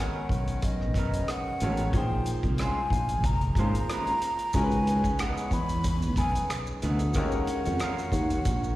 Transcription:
0.00 1.57 D#3 medium
0.00 0.17 F#3 medium
0.00 1.57 G#3 medium
0.00 0.17 B3 medium
0.00 1.58 C#4 medium
0.00 0.18 D#4 medium
0.00 1.58 F#4 medium
0.00 0.18 A#4 medium
0.00 1.58 B4 medium
0.00 0.66 F#5 medium
0.29 0.95 B1 medium
0.29 kick medium
0.29 closed hi-hat medium
0.47 closed hi-hat soft
0.62 1.32 D#5 medium
0.62 kick medium
0.62 closed hi-hat medium
0.81 cross-stick soft
0.94 1.21 F#1 medium
0.94 1.11 F#3 medium
0.94 1.11 B3 soft
0.94 1.12 D#4 medium
0.94 kick medium
0.94 closed hi-hat medium
0.98 1.12 A#4 medium
1.13 closed hi-hat medium
1.28 1.94 F#5 medium
1.28 muted clean electric guitar stroke soft
1.28 cross-stick medium
1.28 closed hi-hat medium
1.60 1.87 A1 medium
1.60 1.94 D#3 soft
1.60 1.83 F#3 medium
1.60 1.94 G#3 soft
1.60 1.83 B3 medium
1.60 1.94 C#4 soft
1.60 1.83 D#4 medium
1.60 1.95 F#4 soft
1.60 1.84 A#4 medium
1.60 1.95 C#5 medium
1.60 closed hi-hat medium
1.77 closed hi-hat soft
1.93 2.19 A#1 loud
1.93 3.53 F3 medium
1.93 3.54 A#3 medium
1.93 3.54 D#4 medium
1.93 3.54 G#4 medium
1.93 3.55 C5 medium
1.93 2.30 G5 medium
1.93 kick loud
1.93 closed hi-hat medium
2.26 closed hi-hat medium
2.43 2.55 C2 medium
2.43 kick medium
2.43 closed hi-hat soft
2.58 2.78 G#3 medium
2.58 2.78 C#4 medium
2.58 2.79 F4 medium
2.58 2.79 C5 medium
2.58 3.27 G#5 medium
2.58 cross-stick medium
2.58 closed hi-hat medium
2.90 3.24 A#1 medium
2.90 kick medium
2.90 closed hi-hat medium
3.09 closed hi-hat soft
3.24 3.50 F1 medium
3.24 3.57 A#5 medium
3.24 kick loud
3.24 closed hi-hat medium
3.41 closed hi-hat soft
3.55 3.70 G#1 medium
3.55 4.54 F3 soft
3.55 3.72 G#3 medium
3.55 4.55 A#3 soft
3.55 3.73 C#4 medium
3.55 4.52 D#4 soft
3.55 4.55 G#4 soft
3.55 4.55 C5 soft
3.55 4.57 A#5 loud
3.55 kick medium
3.55 closed hi-hat medium
3.59 3.73 F4 medium
3.59 3.73 C5 medium
3.75 closed hi-hat soft
3.89 4.11 G#3 medium
3.89 4.11 C#4 medium
3.89 4.12 F4 medium
3.89 4.12 C5 medium
3.89 cross-stick loud
3.89 closed hi-hat medium
4.07 closed hi-hat soft
4.22 closed hi-hat medium
4.39 closed hi-hat soft
4.53 5.06 C#2 loud
4.53 7.11 G#3 medium
4.53 7.12 C#4 medium
4.53 7.11 D#4 medium
4.53 7.12 F#4 medium
4.53 5.22 G#5 loud
4.53 kick loud
4.53 closed hi-hat medium
4.53 maracas medium
4.57 4.63 A#4 medium
4.63 7.16 B4 medium
4.71 closed hi-hat soft
4.71 maracas soft
4.87 closed hi-hat medium
5.04 kick medium
5.04 closed hi-hat soft
5.04 maracas soft
5.19 5.41 E3 medium
5.19 5.42 B3 medium
5.19 5.42 D#4 medium
5.19 5.42 G#4 medium
5.19 5.55 F#5 medium
5.19 finger snap medium
5.19 cross-stick loud
5.19 closed hi-hat medium
5.19 maracas medium
5.37 closed hi-hat soft
5.37 maracas soft
5.51 6.17 E2 medium
5.51 6.20 B5 loud
5.51 kick medium
5.51 closed hi-hat medium
5.51 maracas soft
5.69 closed hi-hat soft
5.69 maracas soft
5.84 kick medium
5.84 closed hi-hat medium
5.84 maracas medium
6.02 closed hi-hat soft
6.02 maracas soft
6.16 6.42 B1 medium
6.16 6.32 E3 medium
6.16 6.33 B3 medium
6.16 6.33 D#4 medium
6.16 6.34 G#4 medium
6.16 6.56 G#5 loud
6.16 kick loud
6.16 closed hi-hat medium
6.16 maracas soft
6.35 closed hi-hat medium
6.35 maracas soft
6.50 finger snap medium
6.50 muted clean electric guitar stroke soft
6.50 cross-stick loud
6.50 closed hi-hat medium
6.50 maracas medium
6.67 maracas soft
6.82 7.15 D2 medium
6.82 7.01 E3 medium
6.82 7.02 B3 medium
6.82 7.02 D#4 medium
6.82 7.03 G#4 medium
6.82 8.76 F#5 medium
6.82 cross-stick soft
6.82 closed hi-hat medium
6.82 maracas soft
6.99 closed hi-hat soft
6.99 maracas soft
7.14 7.41 D#2 loud
7.14 8.76 D#3 medium
7.14 8.76 G#3 medium
7.14 8.76 C#4 medium
7.14 8.76 F#4 medium
7.14 kick loud
7.14 closed hi-hat medium
7.14 maracas medium
7.18 8.76 A#4 medium
7.32 maracas soft
7.47 closed hi-hat medium
7.65 7.78 F2 medium
7.65 closed hi-hat soft
7.65 maracas soft
7.79 7.99 F#3 medium
7.79 8.00 C#4 medium
7.79 8.00 F4 medium
7.79 8.01 A#4 medium
7.79 finger snap medium
7.79 cross-stick loud
7.79 closed hi-hat medium
7.79 maracas medium
7.99 closed hi-hat soft
7.99 maracas soft
8.12 8.38 D#2 medium
8.12 kick medium
8.12 closed hi-hat medium
8.12 maracas soft
8.30 closed hi-hat soft
8.30 maracas soft
8.45 8.71 A#1 medium
8.45 kick loud
8.45 closed hi-hat medium
8.45 maracas medium
8.64 maracas soft

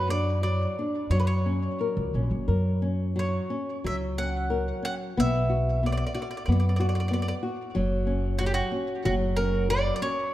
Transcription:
0.00 0.65 F#2 medium
0.00 0.42 F#3 medium
0.09 0.42 D4 medium
0.09 0.42 D5 medium
0.43 0.76 F#3 medium
0.43 1.10 D5 medium
0.79 1.11 D4 soft
1.10 1.66 F#2 medium
1.10 3.14 F#3 medium
1.10 1.18 C#5 medium
1.20 1.26 B4 medium
1.27 2.11 C#5 medium
1.46 1.79 C#4 soft
1.81 2.13 A#4 soft
1.97 2.12 C#2 medium
2.14 2.29 A#1 medium
2.14 2.48 C#4 soft
2.31 2.46 F#1 medium
2.48 3.37 F#2 medium
2.48 2.81 A#4 medium
2.82 3.16 C#4 soft
3.16 3.49 F#3 medium
3.16 3.88 C#5 medium
3.50 3.83 C#4 medium
3.84 4.71 C#2 medium
3.84 5.13 F#3 medium
3.84 3.95 E5 medium
4.18 4.50 C#4 soft
4.18 4.84 F#5 medium
4.50 4.82 A#4 soft
4.83 5.15 C#4 soft
4.83 4.94 F#5 medium
5.17 6.03 B1 medium
5.17 5.82 B3 medium
5.17 5.86 E5 medium
5.49 5.82 F#4 soft
5.83 6.15 B3 medium
5.83 5.91 D5 medium
5.92 5.96 D5 soft
5.97 6.04 D5 medium
6.07 6.12 D5 soft
6.14 6.46 F#4 soft
6.14 6.20 D5 medium
6.22 6.27 D5 soft
6.31 6.35 D5 medium
6.37 6.42 D5 soft
6.46 7.31 F#2 medium
6.46 6.79 B3 medium
6.46 6.50 D5 medium
6.52 6.57 D5 soft
6.60 6.64 D5 soft
6.69 6.72 D5 soft
6.76 7.10 F#4 soft
6.76 6.79 D5 medium
6.80 6.85 D5 soft
6.89 6.93 D5 soft
6.95 6.99 D5 soft
7.00 7.05 D5 soft
7.08 7.42 B3 soft
7.08 7.12 D5 soft
7.13 7.19 D5 medium
7.22 7.27 D5 soft
7.28 7.34 D5 medium
7.43 7.74 F#4 soft
7.75 8.60 F#1 medium
7.75 8.39 F#3 medium
8.07 8.39 C#4 soft
8.39 8.72 F#3 medium
8.39 8.46 F#4 medium
8.46 8.53 G4 medium
8.54 9.04 F#4 medium
8.72 9.03 C#4 medium
9.05 9.90 F#1 medium
9.05 9.69 F#3 medium
9.05 9.14 F#4 medium
9.37 9.69 C#4 soft
9.37 9.67 A#4 medium
9.70 10.01 F#3 soft
9.70 9.95 D5 loud
9.96 10.02 D5 medium
10.02 10.34 C#4 medium
10.02 10.34 C#5 medium

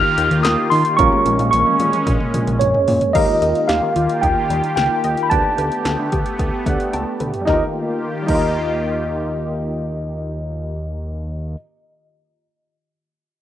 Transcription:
0.00 0.96 D#3 medium
0.00 3.11 A#3 medium
0.00 0.95 D#4 medium
0.00 0.97 F4 medium
0.00 0.95 G4 medium
0.00 0.95 A#4 medium
0.00 0.40 F6 loud
0.18 0.30 D#2 loud
0.18 closed hi-hat medium
0.31 0.43 D#2 loud
0.31 closed hi-hat soft
0.43 0.57 D#2 loud
0.43 0.72 D#6 medium
0.43 snare loud
0.43 clap loud
0.43 closed hi-hat medium
0.70 0.84 D#3 loud
0.70 0.96 C6 medium
0.70 open hi-hat medium
0.85 closed hi-hat medium
0.97 1.11 A#1 loud
0.97 3.13 G#3 medium
0.97 3.13 C#4 loud
0.97 3.11 C#4 medium
0.97 3.11 F4 medium
0.97 3.11 A#4 medium
0.97 1.50 C#6 loud
0.97 kick loud
0.97 closed hi-hat medium
0.97 high tom medium
1.12 high tom medium
1.26 1.38 A#1 loud
1.26 closed hi-hat medium
1.26 high tom medium
1.39 1.51 A#1 loud
1.39 closed hi-hat medium
1.39 high tom medium
1.51 1.65 A#1 loud
1.51 2.02 C#6 medium
1.51 closed hi-hat medium
1.51 mid tom medium
1.66 mid tom medium
1.80 1.92 A#2 loud
1.80 closed hi-hat medium
1.80 mid tom medium
1.93 closed hi-hat medium
1.93 mid tom medium
2.07 2.19 A#1 loud
2.07 kick loud
2.07 closed hi-hat medium
2.07 mid tom medium
2.20 mid tom medium
2.34 2.46 A#1 medium
2.34 closed hi-hat medium
2.34 mid tom medium
2.47 2.59 A#1 loud
2.47 closed hi-hat soft
2.47 mid tom medium
2.59 2.73 A#1 loud
2.59 3.16 C#5 medium
2.59 closed hi-hat medium
2.59 floor tom loud
2.74 floor tom loud
2.88 3.00 A#2 loud
2.88 floor tom loud
2.88 open hi-hat medium
3.01 closed hi-hat medium
3.01 floor tom loud
3.13 3.27 D#2 loud
3.13 5.29 D#3 medium
3.13 5.29 A#3 medium
3.13 5.27 D#4 medium
3.13 5.29 F4 medium
3.13 7.43 G4 medium
3.13 5.27 G4 medium
3.13 5.27 A#4 medium
3.13 3.70 D#5 medium
3.13 3.39 F5 loud
3.13 kick loud
3.13 closed hi-hat medium
3.13 crash medium
3.42 3.54 D#2 loud
3.42 3.66 D#5 medium
3.42 closed hi-hat medium
3.55 closed hi-hat soft
3.68 3.81 D#2 loud
3.68 3.93 G4 medium
3.68 4.24 F5 medium
3.68 snare loud
3.68 closed hi-hat medium
3.83 3.95 D#3 medium
3.96 4.08 D#2 loud
3.96 4.20 F4 medium
3.96 closed hi-hat medium
4.09 closed hi-hat medium
4.22 4.35 D#2 loud
4.22 4.47 D#4 medium
4.22 4.75 G5 medium
4.22 kick medium
4.22 closed hi-hat medium
4.50 4.62 D#2 loud
4.50 4.74 G3 medium
4.50 closed hi-hat medium
4.64 closed hi-hat soft
4.76 4.89 C#2 loud
4.76 5.01 F5 medium
4.76 5.25 G5 medium
4.76 snare loud
4.76 closed hi-hat medium
5.04 5.16 D#2 medium
5.04 5.28 D#5 medium
5.04 closed hi-hat medium
5.17 closed hi-hat soft
5.23 5.31 B5 medium
5.30 5.43 D2 loud
5.30 7.45 A3 medium
5.30 7.45 B3 medium
5.30 6.64 D4 medium
5.30 6.64 G4 medium
5.30 6.64 B4 medium
5.30 5.55 G5 loud
5.30 6.89 A5 loud
5.30 kick loud
5.30 closed hi-hat medium
5.58 5.70 D2 loud
5.58 5.82 B4 medium
5.58 closed hi-hat medium
5.72 closed hi-hat soft
5.85 5.97 D2 loud
5.85 6.09 A4 medium
5.85 snare loud
5.85 closed hi-hat medium
5.99 6.11 D3 medium
6.12 6.24 D2 medium
6.12 6.36 G4 medium
6.12 kick medium
6.12 closed hi-hat medium
6.26 closed hi-hat soft
6.39 6.51 D2 medium
6.39 6.63 B3 medium
6.39 kick medium
6.39 closed hi-hat medium
6.66 6.78 D2 loud
6.66 6.90 A3 medium
6.66 7.47 D4 medium
6.66 7.46 G4 soft
6.66 7.47 B4 medium
6.66 6.91 F#5 medium
6.66 kick medium
6.66 closed hi-hat medium
6.80 closed hi-hat soft
6.93 7.05 C#2 medium
6.93 7.17 G5 medium
6.93 7.44 A5 medium
6.93 closed hi-hat medium
6.93 high tom medium
7.20 7.32 D2 loud
7.20 7.44 B4 medium
7.20 closed hi-hat medium
7.20 mid tom medium
7.34 closed hi-hat soft
7.34 floor tom medium
7.41 7.59 G3 medium
7.41 7.61 D#4 medium
7.47 7.63 D#2 loud
7.47 10.76 D#3 medium
7.47 10.76 A#3 medium
7.47 7.62 D#4 medium
7.47 10.75 F4 medium
7.47 7.62 G4 medium
7.47 10.75 G4 medium
7.47 7.63 A#4 medium
7.47 7.62 D#5 medium
7.47 kick medium
7.47 snare medium
7.53 7.66 F4 medium
8.22 11.50 G3 medium
8.22 11.54 D#4 medium
8.28 11.56 D#2 medium
8.28 11.56 D#4 medium
8.28 11.56 G4 medium
8.28 11.58 A#4 medium
8.28 11.56 D#5 medium
8.28 kick loud
8.28 crash medium
8.34 11.62 F4 medium

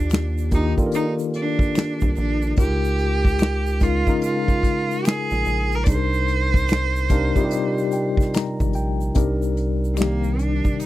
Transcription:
0.00 0.74 D#2 loud
0.00 0.44 D#3 medium
0.00 0.44 A#3 medium
0.00 0.44 D4 medium
0.00 0.52 D4 loud
0.00 0.45 F4 medium
0.00 0.45 G4 medium
0.10 finger snap medium
0.10 snare loud
0.10 closed hi-hat medium
0.10 shaker medium
0.14 finger snap medium
0.38 shaker soft
0.51 0.76 D#3 medium
0.51 0.76 A#3 medium
0.51 0.76 D4 medium
0.51 0.72 D#4 medium
0.51 0.77 F4 medium
0.51 0.77 G4 medium
0.51 kick medium
0.51 closed hi-hat medium
0.51 shaker soft
0.78 2.24 D#3 medium
0.78 2.24 A#3 medium
0.78 2.25 F4 medium
0.78 0.84 A4 medium
0.78 2.24 D5 medium
0.78 kick medium
0.78 shaker soft
0.86 2.28 A#4 medium
0.92 1.13 D#4 medium
0.92 closed hi-hat medium
0.92 shaker medium
1.19 shaker soft
1.34 2.13 D4 medium
1.34 closed hi-hat medium
1.59 kick medium
1.59 shaker soft
1.75 finger snap medium
1.75 snare loud
1.75 closed hi-hat medium
1.75 shaker medium
1.79 finger snap medium
2.01 2.15 C2 medium
2.01 kick medium
2.01 shaker soft
2.15 2.53 A#1 medium
2.15 2.56 D4 medium
2.15 open hi-hat soft
2.15 shaker soft
2.42 shaker soft
2.56 4.04 C#2 loud
2.56 3.73 C#3 medium
2.56 3.73 G#3 medium
2.56 3.73 D#4 medium
2.56 3.73 F4 medium
2.56 3.84 G4 loud
2.56 3.74 A#4 medium
2.56 kick loud
2.56 closed hi-hat medium
2.56 shaker medium
2.84 shaker soft
2.99 closed hi-hat medium
3.25 kick medium
3.25 shaker soft
3.38 finger snap medium
3.38 snare loud
3.38 closed hi-hat medium
3.38 shaker medium
3.43 finger snap loud
3.66 shaker soft
3.80 4.05 C#3 medium
3.80 4.05 G#3 medium
3.80 4.05 D#4 medium
3.80 4.23 F4 loud
3.80 4.06 F4 medium
3.80 4.06 A#4 medium
3.80 kick medium
3.80 closed hi-hat medium
3.80 shaker soft
4.07 5.53 C#3 medium
4.07 5.53 G#3 medium
4.07 5.54 D#4 medium
4.07 5.54 F4 medium
4.07 5.54 A#4 medium
4.07 kick medium
4.07 shaker soft
4.22 5.08 F4 medium
4.22 closed hi-hat medium
4.22 shaker medium
4.48 kick medium
4.48 shaker soft
4.63 kick medium
4.63 closed hi-hat medium
4.91 shaker soft
5.05 5.76 G#4 loud
5.05 finger snap medium
5.05 snare loud
5.05 closed hi-hat medium
5.05 shaker medium
5.09 finger snap medium
5.30 5.44 A#1 medium
5.30 snare soft
5.30 shaker soft
5.45 5.89 A#1 medium
5.45 closed hi-hat medium
5.45 shaker soft
5.72 5.85 A#4 loud
5.72 shaker soft
5.84 7.32 C2 loud
5.84 7.02 C3 medium
5.84 7.02 G3 medium
5.84 5.90 D5 medium
5.84 kick loud
5.84 closed hi-hat medium
5.88 7.03 D4 medium
5.88 7.03 D#4 medium
5.88 5.96 G#4 medium
5.88 8.34 C5 loud
5.88 shaker medium
5.95 7.06 A#4 medium
6.14 shaker soft
6.28 closed hi-hat medium
6.54 kick medium
6.54 shaker soft
6.68 finger snap medium
6.68 snare loud
6.68 closed hi-hat medium
6.68 shaker medium
6.73 finger snap medium
6.96 shaker medium
7.09 7.34 C3 medium
7.09 7.34 G3 medium
7.09 7.34 D4 medium
7.09 7.34 D#4 medium
7.09 7.35 A#4 loud
7.09 7.49 F5 medium
7.09 kick loud
7.09 closed hi-hat medium
7.09 shaker soft
7.36 8.81 C3 medium
7.36 8.82 G3 medium
7.36 8.83 D#4 medium
7.36 7.42 F4 medium
7.36 8.82 D5 medium
7.36 kick medium
7.36 shaker medium
7.45 8.86 G4 loud
7.51 7.90 D#5 medium
7.51 closed hi-hat medium
7.51 shaker medium
7.78 shaker soft
7.92 8.31 G5 medium
7.92 closed hi-hat medium
7.92 shaker soft
8.17 kick medium
8.17 snare soft
8.17 shaker soft
8.34 8.72 A#5 medium
8.34 finger snap medium
8.34 snare loud
8.34 closed hi-hat medium
8.34 shaker medium
8.37 finger snap medium
8.60 8.77 G#1 medium
8.60 kick medium
8.60 shaker soft
8.73 9.11 A#1 medium
8.73 9.13 G5 medium
8.73 closed hi-hat soft
8.73 shaker soft
9.01 shaker soft
9.15 10.61 C2 loud
9.15 9.92 C3 medium
9.15 9.92 G3 medium
9.15 9.92 D4 medium
9.15 9.93 D#4 medium
9.15 9.93 A#4 medium
9.15 kick loud
9.15 closed hi-hat medium
9.15 shaker medium
9.42 shaker soft
9.57 closed hi-hat medium
9.84 shaker soft
9.94 10.86 C3 medium
9.94 10.01 C4 medium
9.94 finger snap medium
9.94 closed hi-hat medium
9.94 shaker medium
9.98 10.86 D#3 medium
9.98 10.86 G3 medium
9.98 10.42 A#3 medium
9.98 10.86 G4 medium
9.98 10.86 D5 medium
9.98 snare loud
10.02 finger snap medium
10.24 shaker soft
10.39 10.81 D4 medium
10.39 closed hi-hat medium
10.65 kick medium
10.65 shaker soft
10.80 10.86 D#4 medium
10.80 closed hi-hat medium
10.80 shaker medium

